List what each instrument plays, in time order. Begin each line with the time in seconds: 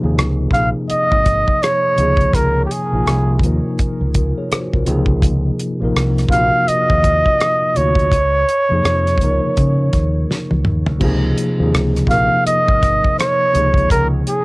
Already playing: tine electric piano F3 A#3 D#4 G#4 A#4 D#5
0.00 fingered electric bass D#2, tine electric piano C3 F3 A#3
0.04 tine electric piano D#4 G#4
0.18 fingered electric bass C#2, cross-stick, closed hi-hat
0.51 fingered electric bass A#1, tine electric piano C3 F3 A#3, flugelhorn F5, kick, closed hi-hat
0.55 tine electric piano D#4 G#4, cross-stick
0.90 flugelhorn D#5, muted fingered electric bass stroke, closed hi-hat
1.12 fingered electric bass G#1, kick
1.26 kick, closed hi-hat
1.48 kick
1.63 flugelhorn C#5, cross-stick, closed hi-hat
1.96 fingered electric bass C#2, tine electric piano C3 F3 A#3 D#4, closed hi-hat
2.01 tine electric piano G#4
2.17 kick, closed hi-hat
2.33 fingered electric bass C#2, flugelhorn A#4, kick, closed hi-hat
2.65 flugelhorn G4
2.71 flugelhorn G#4, closed hi-hat
2.91 fingered electric bass A#1, tine electric piano C3 F3 A#3 D#4
2.95 tine electric piano F4
3.07 fingered electric bass C2, cross-stick, closed hi-hat
3.39 fingered electric bass D#2, tine electric piano C3 F3, kick, closed hi-hat
3.44 tine electric piano A#3 D#4 A#4
3.79 muted fingered electric bass stroke, kick, closed hi-hat
4.01 fingered electric bass C#2
4.14 tine electric piano F4 A#4, kick, closed hi-hat
4.38 tine electric piano G#4 C#5
4.51 tine electric piano F#4 C5, muted fingered electric bass stroke, cross-stick, closed hi-hat
4.73 fingered electric bass C2, tine electric piano F4 A#4, kick
4.86 fingered electric bass C#2, tine electric piano C3 F3 A#3 D#4, closed hi-hat
4.90 tine electric piano G#4
5.06 kick
5.22 kick, closed hi-hat
5.60 closed hi-hat
5.80 fingered electric bass A#1, tine electric piano C3 F3 A#3 D#4
5.84 tine electric piano A#4
5.96 fingered electric bass C2, cross-stick, closed hi-hat
6.18 cross-stick, closed hi-hat
6.29 fingered electric bass A#1, tine electric piano C3 A#3 F4, flugelhorn F5, kick, closed hi-hat
6.33 tine electric piano D#4 F#4, cross-stick
6.68 flugelhorn D#5, muted fingered electric bass stroke, closed hi-hat
6.90 fingered electric bass D#2, kick
7.04 kick, closed hi-hat
7.26 kick
7.41 cross-stick, closed hi-hat
7.74 fingered electric bass D2, tine electric piano C3 A#3 D#4 F4, flugelhorn C#5, closed hi-hat
7.79 tine electric piano F#4
7.95 kick, closed hi-hat
8.12 fingered electric bass C#2, kick, closed hi-hat
8.49 closed hi-hat
8.69 fingered electric bass F2, tine electric piano C3 F3 A#3 D#4
8.74 tine electric piano G#4
8.85 fingered electric bass F2, cross-stick, closed hi-hat
9.07 cross-stick, closed hi-hat
9.18 fingered electric bass C#2, tine electric piano C#3 F3 A#3, kick, closed hi-hat
9.23 tine electric piano D#4 A#4
9.57 fingered electric bass C#3, kick, closed hi-hat
9.93 fingered electric bass D#2, kick, cross-stick, closed hi-hat
10.31 snare
10.51 fingered electric bass C#2, high tom
10.65 fingered electric bass D#2, mid tom
10.86 fingered electric bass D2, floor tom
11.00 fingered electric bass C#2, tine electric piano C3 F3 A#3 D#4, kick, crash
11.05 tine electric piano G#4
11.38 closed hi-hat
11.58 fingered electric bass D#2, tine electric piano C3 F3 A#3 D#4
11.63 tine electric piano G#4
11.74 fingered electric bass C#2, cross-stick, closed hi-hat
11.96 cross-stick, closed hi-hat
12.07 fingered electric bass A#1, tine electric piano C3 F3 A#3, flugelhorn F5, kick, closed hi-hat
12.11 tine electric piano D#4 A#4, cross-stick
12.47 flugelhorn D#5, muted fingered electric bass stroke, closed hi-hat
12.68 fingered electric bass G#1, kick
12.83 kick, cross-stick, closed hi-hat
13.04 kick
13.19 flugelhorn C#5, cross-stick, closed hi-hat
13.53 fingered electric bass C#2, tine electric piano C3 F3 A#3 D#4, closed hi-hat
13.58 tine electric piano G#4
13.74 kick, closed hi-hat
13.90 fingered electric bass C#2, flugelhorn A#4, kick, closed hi-hat
14.27 flugelhorn G#4, closed hi-hat